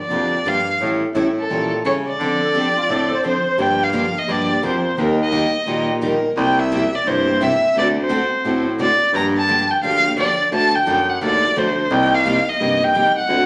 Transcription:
0.00 D5
0.10 F2 D3 F3 A#3 D4 G4
0.45 G2 D3 F3 A#3 D4 G4 F5
0.80 A2 E3 G3 C#4 E4 A4
1.14 A2 E3 G3 C#4 E4 A4
1.39 A4
1.50 A#2 E3 G3 C#4 E4 A4
1.84 C#3 E3 G3 C#4 E4 A4 C#5
2.08 D5
2.19 D3 F3 C4 D4 A4
2.41 A4
2.54 D3 F3 C4 D4 G4 A4
2.76 F4
2.88 A2 D3 F3 C4 D4 A4
3.11 C5
3.24 D3 F3 C4 D4 A4 C5
3.58 G2 D3 F3 A#3 D4 G4
3.62 G5
3.84 F5
3.93 D3 F3 A#3 D4 G4
4.18 D#5
4.27 G2 D3 F3 A#3 D4 G4
4.32 D5
4.49 A#3 D4 G4
4.62 F2 D3 F3 A#3 D4 G4 C5
4.98 D#2 D#3 G3 A#3 D#4 G4 A#4
5.23 D#5
5.31 D#3 G3 A#3 D#4 G4
5.66 A#2 D#3 G3 A#3 D#4 G4
5.88 A#3 D#4 G4
6.02 D#3 G3 A#3 D#4 G4 A#4
6.37 C2 C3 G3 A#3 E4 G4 G5
6.60 E5
6.71 C3 G3 A#3 E4 G4
6.95 D5
7.06 G2 C3 G3 A#3 E4 G4 C5
7.28 A#3 E4 G4
7.40 C3 G3 A#3 E4 G4 E5
7.75 D2 D3 A3 C4 F#4 A4 D5
8.00 C5
8.10 D3 A3 C4 F#4 A4
8.45 A2 D3 A3 C4 F#4 A4
8.67 C4 F#4 A4
8.80 D3 A3 C4 F#4 A4 D5
9.13 G2 D3 F3 A#3 D4 G4 A#5
9.37 A5
9.48 D3 F3 A#3 D4 G4
9.71 G5
9.83 D2 D3 F3 A#3 D4 G4 F5
10.04 A#3 D4 G4
10.18 D3 F3 A#3 D4 G4 D5
10.52 D2 D3 F#3 A3 D4 F#4 A4 A5
10.75 G5
10.86 F#2 D3 F#3 A3 D4 F#4 A4
11.10 F#5
11.21 D#2 D3 F#3 A3 D4 F#4 A4 D5
11.42 A3 D4 F#4
11.55 D2 D3 F#3 A3 D4 F#4 A4 C5
11.90 C2 C3 G3 A#3 D#4 G4 G5
12.15 F5
12.25 C3 G3 A#3 D#4 G4
12.49 D#5
12.59 G2 C3 G3 A#3 D#4 G4
12.82 A#3 D#4 G4 G5
12.95 C3 G3 A#3 D#4 G4
13.18 F#5
13.29 D2 D3 A3 C4 F#4 A4

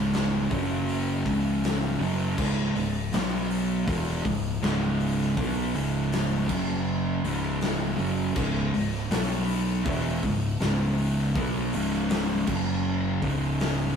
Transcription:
Already playing: C#1 C#2 G#2 C#3
0.14 snare, open hi-hat
0.50 F#1 F#2 C#3 F#3, kick, open hi-hat
0.88 open hi-hat
1.25 C#1 C#2 G#2 C#3, kick, open hi-hat
1.64 snare, open hi-hat
2.00 F#1 F#2 C#3 F#3, open hi-hat
2.37 C#1 C#2 G#2 C#3, kick, crash
2.75 C#1 C#2 G#2, open hi-hat
3.12 B1 B2 F#3 B3, snare, open hi-hat
3.51 open hi-hat
3.86 E1 E2 B2 E3, kick, open hi-hat
4.24 C#1 C#2 G#2, kick, open hi-hat
4.61 C#1 C#2 G#2 C#3, snare, open hi-hat
5.00 open hi-hat
5.21 snare
5.37 B1 B2 F#3 B3, kick, open hi-hat
5.74 C#1 C#2 G#2 C#3, open hi-hat
6.12 snare, open hi-hat
6.48 F#1 F#2 C#3 F#3, kick, crash
7.24 C#1 C#2 G#2 C#3, open hi-hat
7.61 snare, open hi-hat
7.98 F#1 F#2 C#3 F#3, open hi-hat
8.36 C#1 C#2 G#2 C#3, kick, crash
8.73 C#1 C#2 G#2, open hi-hat
8.94 snare
9.11 B1 B2 F#3 B3, snare, open hi-hat
9.48 open hi-hat
9.85 E1 E2 B2 E3, kick, open hi-hat
10.23 C#1 C#2 G#2, kick, open hi-hat
10.60 C#1 C#2 G#2 C#3, snare, open hi-hat
10.98 open hi-hat
11.18 snare
11.35 B1 B2 F#3 B3, kick, open hi-hat
11.73 C#1 C#2 G#2 C#3, open hi-hat
11.93 snare
12.10 snare, open hi-hat
12.47 F#1 F#2 C#3 F#3, kick, crash
13.22 C#1 C#2 G#2 C#3, kick, open hi-hat
13.60 snare, open hi-hat

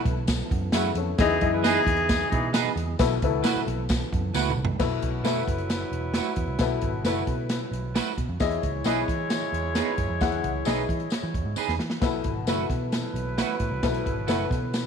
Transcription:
Already playing: E3 B3 E4 A4 B4
0.05 B1, kick, closed hi-hat
0.28 kick, snare, closed hi-hat, tambourine
0.51 F#2, kick, closed hi-hat
0.72 F#2 A3 E4 F#4 G#4 B4 E5, snare, closed hi-hat, tambourine
0.95 F2 C#4 A4, closed hi-hat
1.18 E2 E3 D#4 E4 G#4 D#5, kick, snare, closed hi-hat, tambourine
1.41 F#2 E4 G#4 D#5, kick, closed hi-hat
1.51 G#3 E4 B4
1.62 E3 B3 D#4 G#4 B4, snare, closed hi-hat, tambourine
1.87 E2, kick, snare, closed hi-hat
1.97 closed hi-hat
2.09 kick, snare, closed hi-hat, tambourine
2.29 B2 E3 D#4 G#4, kick, closed hi-hat
2.53 B3 D#4 G#4 B4, snare, closed hi-hat, tambourine
2.76 E2, closed hi-hat
2.98 B1 B2 B3 E4 A4 B4, kick, snare, closed hi-hat, tambourine
3.22 C#2 E4 A4 B4, kick, closed hi-hat
3.43 A3 E4 F#4 B4, snare, closed hi-hat, tambourine
3.56 muted picked electric bass stroke
3.67 B1, closed hi-hat
3.89 kick, snare, closed hi-hat, tambourine
4.12 F#2, kick, closed hi-hat
4.34 C#2 A3 E4 F#4 B4, snare, tambourine
4.50 mid tom
4.56 C2
4.65 floor tom
4.79 B1 B2 F#3 E4 A4 B4, kick, snare, crash, tambourine
5.02 B1, kick, closed hi-hat
5.23 B2 A3 E4 F#4 A4 B4, snare, closed hi-hat, tambourine
5.47 F#1, kick, closed hi-hat
5.58 closed hi-hat
5.70 snare, closed hi-hat, tambourine
5.92 E1, closed hi-hat
6.14 A3 E4 F#4 B4, snare, closed hi-hat, tambourine
6.36 E2, kick, closed hi-hat
6.48 C2
6.59 B1 B2 E4 A4 B4, kick, snare, closed hi-hat, tambourine
6.81 G#1, kick, closed hi-hat
7.03 F#1 A3 E4 F#4 A4 B4, snare, closed hi-hat, tambourine
7.27 B2, kick, closed hi-hat
7.49 snare, closed hi-hat, tambourine
7.71 B1, closed hi-hat
7.95 A3 E4 F#4 B4, snare, closed hi-hat, tambourine
8.17 B2, kick, closed hi-hat
8.29 F2
8.39 E2 E3 G#3 E4 G#4 C#5 D#5, kick, snare, closed hi-hat, tambourine
8.51 closed hi-hat
8.63 C#2, kick, closed hi-hat
8.84 B1 B3 D#4 E4 G#4 B4 D#5, snare, closed hi-hat, tambourine
9.08 E3, kick, snare, closed hi-hat
9.30 snare, closed hi-hat, tambourine
9.53 E2, closed hi-hat
9.75 B3 D#4 G#4 B4, snare, closed hi-hat, tambourine
9.98 F#2, kick, closed hi-hat
10.10 F2
10.21 E3 E4 G#4 F#5, kick, snare, closed hi-hat, tambourine
10.32 closed hi-hat
10.44 C#2, kick, closed hi-hat
10.65 B1 B3 D#4 E4 G#4 B4 D#5, snare, closed hi-hat, tambourine
10.89 E3, kick, closed hi-hat
11.00 closed hi-hat
11.10 snare, closed hi-hat, tambourine
11.23 E3
11.34 E2, kick, closed hi-hat
11.45 G#2
11.56 B3 D#4 G#4 B4, muted picked electric bass stroke, tambourine
11.68 E2, snare
11.78 E3, snare
11.90 snare
12.00 B1 B2 E3 B3 E4 A4 B4, kick, snare, closed hi-hat, tambourine
12.24 G#1, kick, closed hi-hat
12.46 F#1 A3 E4 F#4 A4 B4, snare, closed hi-hat, tambourine
12.70 B2, kick, snare, closed hi-hat
12.91 F#3 E4 B4, snare, closed hi-hat, tambourine
13.14 B1, closed hi-hat
13.38 A3 E4 F#4 B4, snare, closed hi-hat, tambourine
13.60 A2, kick, closed hi-hat
13.70 C2
13.81 B1 B2 E4 F#4 A4 B4, kick, snare, closed hi-hat, tambourine
13.94 closed hi-hat
14.06 G#1, kick, closed hi-hat
14.27 F#1 A3 E4 F#4 A4 B4, snare, closed hi-hat, tambourine
14.50 B2, kick, snare, closed hi-hat
14.74 snare, closed hi-hat, tambourine

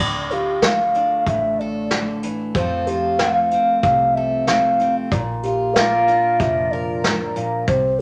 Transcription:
0.00 D2 D3 D5
0.31 F4 G4, closed hi-hat
0.62 A3 F5, snare, closed hi-hat
0.94 D4, closed hi-hat
1.26 A1 A2 E5, kick, closed hi-hat
1.60 A4 D5
1.91 D3, snare, closed hi-hat
2.23 E3, closed hi-hat
2.55 F2 F3 A3 C4 F4 C5, kick, closed hi-hat
2.59 A4
2.87 F4 G4, closed hi-hat
3.19 A3 F5, snare, closed hi-hat
3.51 C4, closed hi-hat
3.82 C2 C3 F5, kick, closed hi-hat
4.14 A4 E5
4.47 A3 F5, snare, closed hi-hat
4.79 C4, closed hi-hat
5.11 A#1 A#2 D5, kick, closed hi-hat
5.43 F4 G4, closed hi-hat
5.74 F4 F5, snare, closed hi-hat
5.79 A#4 D5
6.08 D4, closed hi-hat
6.39 F1 F3 E5, kick, closed hi-hat
6.71 A#4 D5
7.04 A2, snare, closed hi-hat
7.36 A#2, closed hi-hat
7.68 C2 C3 C5, kick, closed hi-hat

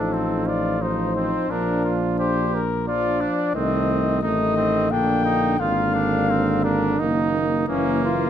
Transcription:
Already playing: A1 F3 D4 D#4 A4
0.13 C4
0.47 F4 D5
0.81 F3 D#4 C5
1.16 C4
1.50 A#1 F3 D4 A#4
1.84 F4
2.19 G4 C5
2.55 A#4
2.87 F3 D4 F4 D5
3.21 D4
3.55 C2 D#3 A3 C4 D#5
4.22 A1 D#3 A3 D#4 D#5
4.57 C4
4.90 A#1 D3 A#3 D4 G5
5.25 D#4
5.60 G#1 D3 A#3 F4 F5
5.95 D4
6.30 C4
6.64 D4 A#4
6.99 F#1 D#3 A#3 D#4
7.68 F#1 E3 A#3 C#4
8.05 F4

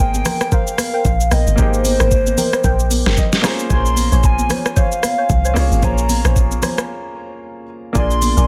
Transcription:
Already playing: G#1 A#3 D#4 G#4 A#4 C5
0.00 G5
0.14 high conga, shaker
0.25 A#4 C5 G5, cross-stick, open hi-hat, high conga, low conga, shaker
0.41 cross-stick, shaker
0.52 A#4 C5 F5 G5, kick, low conga, shaker
0.67 shaker
0.78 cross-stick, open hi-hat, high conga, shaker
0.93 A#4 C5 G5
1.05 A#1, kick, low conga, shaker
1.20 shaker
1.31 A#1 A#4 C5 D#5 G5, cross-stick, open hi-hat, high conga, shaker
1.47 G1, shaker
1.56 G#1 A#3 D#4 G4 A#4 C5 G5, kick, low conga, shaker
1.61 G#4 D#5
1.74 shaker
1.85 open hi-hat, high conga, shaker
2.00 G#1 A#4 C5 G5, cross-stick, shaker
2.11 kick, shaker
2.26 high conga, shaker
2.37 A#4 C5 G5, open hi-hat, high conga, low conga, shaker
2.53 cross-stick, shaker
2.64 A#1 A#4 C5 G5, kick, low conga, shaker
2.80 shaker
2.91 open hi-hat, high conga, shaker
3.06 G1 A#4 C5 G5, cross-stick, snare
3.17 D#5, kick, low conga, shaker
3.33 snare, shaker
3.42 A#3 C#4 F4 C5 C#5 G#5 A#5, cross-stick, snare, open hi-hat, high conga, shaker
3.46 G#4 C5
3.59 shaker
3.70 A#1 C5 C#5 G#5 C6, kick, low conga, shaker
3.86 shaker
3.97 open hi-hat, high conga, shaker
4.12 A#1 C5 C#5 G#5, shaker
4.24 G#5, kick, shaker
4.38 high conga, shaker
4.50 C5 C#5 G#5, cross-stick, open hi-hat, high conga, low conga, shaker
4.66 cross-stick, shaker
4.76 C5 C#5 F5 G#5, kick, low conga, shaker
4.92 shaker
5.03 cross-stick, open hi-hat, high conga, shaker
5.18 C5 C#5 G#5
5.30 C2, kick, low conga, shaker
5.45 C5 C#5 G#5, shaker
5.54 C2 A#3 C#4 F4, cross-stick, open hi-hat, high conga, shaker
5.58 G#4 C#5
5.72 G#1, shaker
5.82 A#1 C5 C#5 G#5 A#5, kick, low conga, shaker
5.98 shaker
6.09 open hi-hat, high conga, shaker
6.24 A#1 C5 C#5 G#5, cross-stick, shaker
6.36 kick, shaker
6.51 high conga, shaker
6.62 C5 C#5 G#5, cross-stick, open hi-hat, high conga, low conga, shaker
6.78 cross-stick, shaker
7.93 A#1 A#3 D4 F4 A#4 D5 G#5, kick, low conga, shaker
7.97 G#4 D5 C6
8.11 shaker
8.22 open hi-hat, high conga, shaker
8.37 A#1 A#4 D5 G#5, shaker

